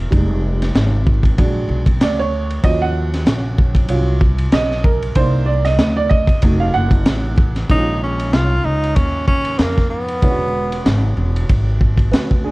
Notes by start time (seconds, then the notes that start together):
0.11 F1 G3 G#3 D#4, kick, ride
0.62 snare, ride
0.75 G#1, snare, hi-hat pedal, ride
1.07 kick
1.23 kick, ride
1.38 A#1 F#3 G#3 D4, kick, ride
1.69 B1
1.86 kick, ride
2.00 D2 D5, snare, hi-hat pedal, ride
2.20 C#5
2.50 ride
2.63 D#2 F3 F#3 C#4 D#5, kick, ride
2.82 F#5
3.14 snare, ride
3.26 A#1, snare, hi-hat pedal, ride
3.58 kick
3.75 kick, ride
3.88 C2 F#3 C#4 F4, ride
4.21 kick
4.38 ride
4.52 B1 D#5, snare, hi-hat pedal, ride
4.71 snare
4.84 A#4, kick
5.02 ride
5.15 C2 A#3 D#4 C5 D5, kick, ride
5.46 D5
5.65 D#5, snare, ride
5.79 D2, snare, hi-hat pedal, ride
5.97 D5
6.09 D#5, kick
6.27 muted upright bass stroke, kick, ride
6.42 F1 F#3 A3 D#4, kick, ride
6.60 F5
6.74 F#1 F#5
6.91 kick, ride
7.06 A1, snare, hi-hat pedal, ride
7.38 kick
7.56 snare, ride
7.69 A#1 D#3 G#3 C#4 D#4 E4, kick, ride
7.79 F4
8.03 C#4
8.19 ride
8.33 C2 F4, snare, hi-hat pedal, ride
8.64 C#2 D#4
8.83 ride
8.96 D#2 C#4, kick, ride
9.27 C#4, kick
9.45 ride
9.58 F2 A#3, snare, hi-hat pedal, ride
9.78 kick, snare
9.90 B3
10.08 ride
10.21 E1 D3 G#3 B3 C#4 E4, kick, ride
10.30 F#4
10.72 ride
10.85 G#1, snare, hi-hat pedal, ride
11.17 E1
11.36 ride
11.49 G#1, kick, ride
11.81 kick
11.98 kick, ride
12.11 D2 F#4 B4, snare, hi-hat pedal, ride
12.31 kick
12.44 D4 G#4